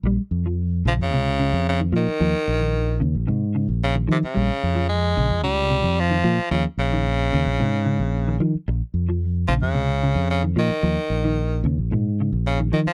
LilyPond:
<<
  \new Staff \with { instrumentName = "Clean electric guitar" } { \clef bass \time 4/4 \key bes \dorian \tempo 4 = 111 g8 r16 f8 r16 des8 c8 des8 r16 ees16 f8 | f8 r16 ees8 r16 des8 c8 des8 r16 ees16 f8 | g8 r16 f8 r16 des8 des8 c8 r16 ees16 f8 | f8 r16 ees8 r16 des8 c8 des8 r16 ees16 f8 |
r8. f8 r16 des8 c8 des8 r16 ees16 f8 | f8 r16 ees8 r16 des8 bes,8 des8 r16 ees16 f8 | }
  \new Staff \with { instrumentName = "Tenor saxophone" } { \clef bass \time 4/4 \key bes \dorian r4. f16 des4~ des16 des8 ees8~ | ees4. r4. des8 c16 des16~ | des4 aes4 g4 f4 | des8 des2. r8 |
r4. f16 des4~ des16 des8 ees8~ | ees4. r4. des8 ees16 f16 | }
  \new Staff \with { instrumentName = "Fingered electric bass" } { \clef bass \time 4/4 \key bes \dorian bes,,16 r16 f,4 bes,,16 f,16 des,8. f,8. bes,16 r16 | ees,16 r16 bes,,4 ees,16 bes,,16 aes,8. bes,,8. ees16 r16 | bes,,16 r16 f,4 bes,,16 f,16 des,8. f,8. bes,16 r16 | ees,16 r16 bes,,4 ees,16 bes,,16 aes,8. bes,,8. ees16 r16 |
bes,,16 r16 f,4 bes,,16 f,16 des,8. f,8. bes,16 r16 | ees,16 r16 bes,,4 ees,16 bes,,16 aes,8. bes,,8. ees16 r16 | }
>>